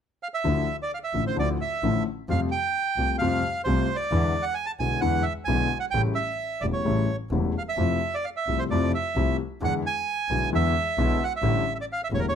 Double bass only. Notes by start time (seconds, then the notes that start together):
0.45 D2
1.14 A1
1.38 D2
1.83 A1
2.29 F2
2.97 C2
3.20 F2
3.66 C2
4.11 E2
4.80 B1
5.02 E2
5.47 B1
5.93 A1
6.62 E1
6.85 A1
7.31 E1
7.77 F2
8.47 C2
8.70 F2
9.16 C2
9.61 E2
10.29 B1
10.52 E2
10.98 B1
11.42 A1
12.11 E1